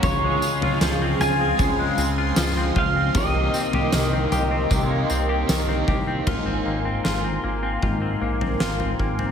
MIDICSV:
0, 0, Header, 1, 7, 480
1, 0, Start_track
1, 0, Key_signature, -4, "major"
1, 0, Tempo, 779221
1, 19, Time_signature, 4, 2, 24, 8
1, 5738, End_track
2, 0, Start_track
2, 0, Title_t, "Analog synth pad"
2, 0, Program_c, 0, 89
2, 18, Note_on_c, 0, 84, 92
2, 19, Note_on_c, 0, 68, 84
2, 19, Note_on_c, 0, 77, 73
2, 1920, Note_off_c, 0, 68, 0
2, 1920, Note_off_c, 0, 77, 0
2, 1935, Note_on_c, 0, 79, 76
2, 1937, Note_on_c, 0, 70, 83
2, 1937, Note_on_c, 0, 75, 70
2, 3834, Note_off_c, 0, 84, 0
2, 3838, Note_off_c, 0, 79, 0
2, 3839, Note_off_c, 0, 70, 0
2, 3839, Note_off_c, 0, 75, 0
2, 3859, Note_on_c, 0, 84, 89
2, 3860, Note_on_c, 0, 70, 70
2, 3860, Note_on_c, 0, 77, 70
2, 3860, Note_on_c, 0, 80, 70
2, 5738, Note_off_c, 0, 70, 0
2, 5738, Note_off_c, 0, 77, 0
2, 5738, Note_off_c, 0, 80, 0
2, 5738, Note_off_c, 0, 84, 0
2, 5738, End_track
3, 0, Start_track
3, 0, Title_t, "Pedal steel guitar"
3, 0, Program_c, 1, 26
3, 25, Note_on_c, 1, 73, 115
3, 477, Note_off_c, 1, 73, 0
3, 745, Note_on_c, 1, 80, 106
3, 1713, Note_off_c, 1, 80, 0
3, 1715, Note_on_c, 1, 77, 80
3, 1953, Note_on_c, 1, 75, 94
3, 1954, Note_off_c, 1, 77, 0
3, 3007, Note_off_c, 1, 75, 0
3, 3007, Note_on_c, 1, 73, 94
3, 3602, Note_off_c, 1, 73, 0
3, 5738, End_track
4, 0, Start_track
4, 0, Title_t, "Clean electric guitar"
4, 0, Program_c, 2, 27
4, 0, Note_on_c, 2, 42, 82
4, 0, Note_on_c, 2, 54, 67
4, 0, Note_on_c, 2, 58, 58
4, 0, Note_on_c, 2, 61, 57
4, 0, Note_on_c, 2, 66, 67
4, 27, Note_on_c, 2, 49, 80
4, 69, Note_off_c, 2, 58, 0
4, 70, Note_off_c, 2, 54, 0
4, 71, Note_off_c, 2, 42, 0
4, 72, Note_off_c, 2, 66, 0
4, 148, Note_on_c, 2, 56, 60
4, 387, Note_on_c, 2, 65, 72
4, 508, Note_on_c, 2, 53, 70
4, 625, Note_off_c, 2, 61, 0
4, 627, Note_on_c, 2, 60, 58
4, 739, Note_off_c, 2, 65, 0
4, 747, Note_on_c, 2, 65, 61
4, 864, Note_off_c, 2, 60, 0
4, 866, Note_on_c, 2, 60, 59
4, 975, Note_off_c, 2, 49, 0
4, 983, Note_on_c, 2, 49, 84
4, 1096, Note_off_c, 2, 56, 0
4, 1103, Note_on_c, 2, 56, 59
4, 1223, Note_off_c, 2, 60, 0
4, 1226, Note_on_c, 2, 60, 55
4, 1336, Note_off_c, 2, 65, 0
4, 1343, Note_on_c, 2, 65, 62
4, 1453, Note_off_c, 2, 53, 0
4, 1460, Note_on_c, 2, 53, 71
4, 1583, Note_off_c, 2, 60, 0
4, 1586, Note_on_c, 2, 60, 60
4, 1694, Note_off_c, 2, 65, 0
4, 1702, Note_on_c, 2, 65, 67
4, 1822, Note_off_c, 2, 60, 0
4, 1824, Note_on_c, 2, 60, 57
4, 1938, Note_off_c, 2, 49, 0
4, 1940, Note_on_c, 2, 48, 83
4, 1988, Note_off_c, 2, 53, 0
4, 1988, Note_off_c, 2, 65, 0
4, 1989, Note_off_c, 2, 56, 0
4, 2061, Note_on_c, 2, 58, 55
4, 2080, Note_off_c, 2, 60, 0
4, 2182, Note_on_c, 2, 60, 61
4, 2307, Note_on_c, 2, 67, 73
4, 2421, Note_on_c, 2, 51, 70
4, 2542, Note_off_c, 2, 60, 0
4, 2545, Note_on_c, 2, 60, 57
4, 2653, Note_off_c, 2, 67, 0
4, 2660, Note_on_c, 2, 67, 65
4, 2776, Note_off_c, 2, 60, 0
4, 2779, Note_on_c, 2, 60, 59
4, 2892, Note_off_c, 2, 48, 0
4, 2899, Note_on_c, 2, 48, 81
4, 3017, Note_off_c, 2, 58, 0
4, 3019, Note_on_c, 2, 58, 58
4, 3138, Note_off_c, 2, 60, 0
4, 3141, Note_on_c, 2, 60, 58
4, 3252, Note_off_c, 2, 67, 0
4, 3260, Note_on_c, 2, 67, 65
4, 3381, Note_off_c, 2, 51, 0
4, 3384, Note_on_c, 2, 51, 67
4, 3500, Note_off_c, 2, 60, 0
4, 3502, Note_on_c, 2, 60, 57
4, 3613, Note_off_c, 2, 67, 0
4, 3621, Note_on_c, 2, 67, 60
4, 3739, Note_off_c, 2, 60, 0
4, 3741, Note_on_c, 2, 60, 61
4, 3860, Note_on_c, 2, 44, 66
4, 3861, Note_off_c, 2, 67, 0
4, 3863, Note_on_c, 2, 65, 61
4, 3907, Note_off_c, 2, 48, 0
4, 3975, Note_off_c, 2, 60, 0
4, 3978, Note_on_c, 2, 60, 53
4, 3996, Note_off_c, 2, 58, 0
4, 4100, Note_on_c, 2, 58, 55
4, 4213, Note_off_c, 2, 60, 0
4, 4221, Note_on_c, 2, 60, 53
4, 4336, Note_off_c, 2, 65, 0
4, 4338, Note_on_c, 2, 65, 58
4, 4357, Note_off_c, 2, 51, 0
4, 4454, Note_off_c, 2, 60, 0
4, 4461, Note_on_c, 2, 60, 48
4, 4579, Note_off_c, 2, 58, 0
4, 4581, Note_on_c, 2, 58, 47
4, 4691, Note_off_c, 2, 60, 0
4, 4698, Note_on_c, 2, 60, 50
4, 4812, Note_off_c, 2, 44, 0
4, 4819, Note_on_c, 2, 44, 65
4, 4821, Note_off_c, 2, 65, 0
4, 4823, Note_on_c, 2, 65, 52
4, 4930, Note_off_c, 2, 60, 0
4, 4937, Note_on_c, 2, 60, 48
4, 5058, Note_off_c, 2, 58, 0
4, 5060, Note_on_c, 2, 58, 49
4, 5174, Note_off_c, 2, 60, 0
4, 5181, Note_on_c, 2, 60, 51
4, 5297, Note_off_c, 2, 65, 0
4, 5300, Note_on_c, 2, 65, 58
4, 5412, Note_off_c, 2, 60, 0
4, 5419, Note_on_c, 2, 60, 50
4, 5539, Note_off_c, 2, 58, 0
4, 5542, Note_on_c, 2, 58, 46
4, 5653, Note_off_c, 2, 60, 0
4, 5661, Note_on_c, 2, 60, 49
4, 5738, Note_off_c, 2, 44, 0
4, 5738, Note_off_c, 2, 58, 0
4, 5738, Note_off_c, 2, 60, 0
4, 5738, Note_off_c, 2, 65, 0
4, 5738, End_track
5, 0, Start_track
5, 0, Title_t, "Overdriven electric guitar"
5, 0, Program_c, 3, 29
5, 0, Note_on_c, 3, 61, 81
5, 9, Note_on_c, 3, 49, 78
5, 15, Note_on_c, 3, 53, 89
5, 22, Note_on_c, 3, 56, 85
5, 31, Note_on_c, 3, 65, 85
5, 243, Note_off_c, 3, 65, 0
5, 250, Note_on_c, 3, 65, 52
5, 254, Note_off_c, 3, 49, 0
5, 257, Note_off_c, 3, 53, 0
5, 261, Note_off_c, 3, 56, 0
5, 283, Note_on_c, 3, 56, 43
5, 971, Note_on_c, 3, 53, 66
5, 975, Note_off_c, 3, 65, 0
5, 977, Note_off_c, 3, 56, 0
5, 985, Note_on_c, 3, 56, 62
5, 992, Note_off_c, 3, 61, 0
5, 994, Note_on_c, 3, 60, 66
5, 1001, Note_on_c, 3, 65, 72
5, 1448, Note_off_c, 3, 53, 0
5, 1456, Note_off_c, 3, 56, 0
5, 1456, Note_on_c, 3, 53, 72
5, 1464, Note_on_c, 3, 56, 67
5, 1470, Note_off_c, 3, 65, 0
5, 1471, Note_off_c, 3, 60, 0
5, 1474, Note_on_c, 3, 60, 74
5, 1484, Note_on_c, 3, 65, 75
5, 1932, Note_on_c, 3, 48, 79
5, 1937, Note_off_c, 3, 53, 0
5, 1942, Note_off_c, 3, 56, 0
5, 1945, Note_on_c, 3, 51, 79
5, 1952, Note_off_c, 3, 65, 0
5, 1957, Note_on_c, 3, 58, 78
5, 1963, Note_off_c, 3, 60, 0
5, 1966, Note_on_c, 3, 63, 93
5, 1977, Note_on_c, 3, 67, 88
5, 2888, Note_off_c, 3, 51, 0
5, 2890, Note_on_c, 3, 51, 73
5, 2895, Note_off_c, 3, 48, 0
5, 2902, Note_off_c, 3, 58, 0
5, 2905, Note_on_c, 3, 58, 72
5, 2910, Note_off_c, 3, 63, 0
5, 2912, Note_on_c, 3, 63, 74
5, 2916, Note_off_c, 3, 67, 0
5, 2923, Note_on_c, 3, 67, 80
5, 3369, Note_off_c, 3, 51, 0
5, 3372, Note_on_c, 3, 51, 66
5, 3380, Note_off_c, 3, 58, 0
5, 3382, Note_on_c, 3, 58, 75
5, 3391, Note_off_c, 3, 67, 0
5, 3393, Note_off_c, 3, 63, 0
5, 3396, Note_on_c, 3, 63, 68
5, 3400, Note_on_c, 3, 67, 75
5, 3870, Note_off_c, 3, 67, 0
5, 4178, Note_off_c, 3, 51, 0
5, 4178, Note_off_c, 3, 58, 0
5, 4178, Note_off_c, 3, 63, 0
5, 5738, End_track
6, 0, Start_track
6, 0, Title_t, "Analog synth bass"
6, 0, Program_c, 4, 38
6, 19, Note_on_c, 4, 37, 116
6, 231, Note_off_c, 4, 37, 0
6, 377, Note_on_c, 4, 37, 91
6, 484, Note_off_c, 4, 37, 0
6, 497, Note_on_c, 4, 37, 101
6, 709, Note_off_c, 4, 37, 0
6, 733, Note_on_c, 4, 37, 100
6, 947, Note_off_c, 4, 37, 0
6, 983, Note_on_c, 4, 37, 108
6, 1192, Note_off_c, 4, 37, 0
6, 1219, Note_on_c, 4, 37, 108
6, 1430, Note_off_c, 4, 37, 0
6, 1461, Note_on_c, 4, 37, 110
6, 1671, Note_off_c, 4, 37, 0
6, 1700, Note_on_c, 4, 37, 107
6, 1911, Note_off_c, 4, 37, 0
6, 1940, Note_on_c, 4, 36, 112
6, 2151, Note_off_c, 4, 36, 0
6, 2300, Note_on_c, 4, 36, 82
6, 2405, Note_off_c, 4, 36, 0
6, 2420, Note_on_c, 4, 36, 94
6, 2631, Note_off_c, 4, 36, 0
6, 2661, Note_on_c, 4, 36, 95
6, 2871, Note_off_c, 4, 36, 0
6, 2900, Note_on_c, 4, 36, 108
6, 3111, Note_off_c, 4, 36, 0
6, 3145, Note_on_c, 4, 36, 91
6, 3354, Note_off_c, 4, 36, 0
6, 3385, Note_on_c, 4, 36, 102
6, 3594, Note_off_c, 4, 36, 0
6, 3621, Note_on_c, 4, 36, 119
6, 3832, Note_off_c, 4, 36, 0
6, 3861, Note_on_c, 4, 32, 97
6, 4071, Note_off_c, 4, 32, 0
6, 4102, Note_on_c, 4, 32, 81
6, 4312, Note_off_c, 4, 32, 0
6, 4346, Note_on_c, 4, 32, 96
6, 4554, Note_off_c, 4, 32, 0
6, 4583, Note_on_c, 4, 32, 79
6, 4793, Note_off_c, 4, 32, 0
6, 4821, Note_on_c, 4, 32, 92
6, 5032, Note_off_c, 4, 32, 0
6, 5060, Note_on_c, 4, 34, 91
6, 5271, Note_off_c, 4, 34, 0
6, 5300, Note_on_c, 4, 32, 91
6, 5511, Note_off_c, 4, 32, 0
6, 5542, Note_on_c, 4, 32, 94
6, 5738, Note_off_c, 4, 32, 0
6, 5738, End_track
7, 0, Start_track
7, 0, Title_t, "Drums"
7, 18, Note_on_c, 9, 43, 115
7, 18, Note_on_c, 9, 54, 65
7, 19, Note_on_c, 9, 36, 114
7, 80, Note_off_c, 9, 43, 0
7, 80, Note_off_c, 9, 54, 0
7, 81, Note_off_c, 9, 36, 0
7, 260, Note_on_c, 9, 54, 70
7, 321, Note_off_c, 9, 54, 0
7, 383, Note_on_c, 9, 43, 73
7, 445, Note_off_c, 9, 43, 0
7, 500, Note_on_c, 9, 38, 112
7, 500, Note_on_c, 9, 54, 81
7, 562, Note_off_c, 9, 38, 0
7, 562, Note_off_c, 9, 54, 0
7, 743, Note_on_c, 9, 43, 67
7, 743, Note_on_c, 9, 54, 68
7, 805, Note_off_c, 9, 43, 0
7, 805, Note_off_c, 9, 54, 0
7, 980, Note_on_c, 9, 43, 65
7, 980, Note_on_c, 9, 54, 69
7, 981, Note_on_c, 9, 36, 96
7, 1041, Note_off_c, 9, 43, 0
7, 1041, Note_off_c, 9, 54, 0
7, 1042, Note_off_c, 9, 36, 0
7, 1219, Note_on_c, 9, 54, 65
7, 1281, Note_off_c, 9, 54, 0
7, 1456, Note_on_c, 9, 38, 121
7, 1456, Note_on_c, 9, 54, 100
7, 1517, Note_off_c, 9, 54, 0
7, 1518, Note_off_c, 9, 38, 0
7, 1699, Note_on_c, 9, 43, 60
7, 1700, Note_on_c, 9, 36, 85
7, 1761, Note_off_c, 9, 36, 0
7, 1761, Note_off_c, 9, 43, 0
7, 1939, Note_on_c, 9, 43, 122
7, 1939, Note_on_c, 9, 54, 65
7, 1941, Note_on_c, 9, 36, 112
7, 2000, Note_off_c, 9, 43, 0
7, 2000, Note_off_c, 9, 54, 0
7, 2002, Note_off_c, 9, 36, 0
7, 2179, Note_on_c, 9, 54, 64
7, 2241, Note_off_c, 9, 54, 0
7, 2300, Note_on_c, 9, 43, 72
7, 2361, Note_off_c, 9, 43, 0
7, 2418, Note_on_c, 9, 38, 117
7, 2418, Note_on_c, 9, 54, 87
7, 2479, Note_off_c, 9, 38, 0
7, 2479, Note_off_c, 9, 54, 0
7, 2661, Note_on_c, 9, 43, 70
7, 2661, Note_on_c, 9, 54, 68
7, 2723, Note_off_c, 9, 43, 0
7, 2723, Note_off_c, 9, 54, 0
7, 2900, Note_on_c, 9, 36, 98
7, 2900, Note_on_c, 9, 43, 61
7, 2900, Note_on_c, 9, 54, 63
7, 2961, Note_off_c, 9, 43, 0
7, 2961, Note_off_c, 9, 54, 0
7, 2962, Note_off_c, 9, 36, 0
7, 3139, Note_on_c, 9, 54, 60
7, 3201, Note_off_c, 9, 54, 0
7, 3382, Note_on_c, 9, 38, 117
7, 3382, Note_on_c, 9, 54, 103
7, 3444, Note_off_c, 9, 38, 0
7, 3444, Note_off_c, 9, 54, 0
7, 3621, Note_on_c, 9, 36, 88
7, 3621, Note_on_c, 9, 43, 62
7, 3682, Note_off_c, 9, 43, 0
7, 3683, Note_off_c, 9, 36, 0
7, 3861, Note_on_c, 9, 36, 96
7, 3861, Note_on_c, 9, 49, 76
7, 3862, Note_on_c, 9, 43, 94
7, 3923, Note_off_c, 9, 36, 0
7, 3923, Note_off_c, 9, 43, 0
7, 3923, Note_off_c, 9, 49, 0
7, 4342, Note_on_c, 9, 38, 94
7, 4403, Note_off_c, 9, 38, 0
7, 4820, Note_on_c, 9, 43, 51
7, 4821, Note_on_c, 9, 36, 78
7, 4881, Note_off_c, 9, 43, 0
7, 4882, Note_off_c, 9, 36, 0
7, 5183, Note_on_c, 9, 43, 53
7, 5244, Note_off_c, 9, 43, 0
7, 5300, Note_on_c, 9, 38, 98
7, 5361, Note_off_c, 9, 38, 0
7, 5420, Note_on_c, 9, 43, 52
7, 5481, Note_off_c, 9, 43, 0
7, 5541, Note_on_c, 9, 36, 75
7, 5602, Note_off_c, 9, 36, 0
7, 5660, Note_on_c, 9, 43, 55
7, 5722, Note_off_c, 9, 43, 0
7, 5738, End_track
0, 0, End_of_file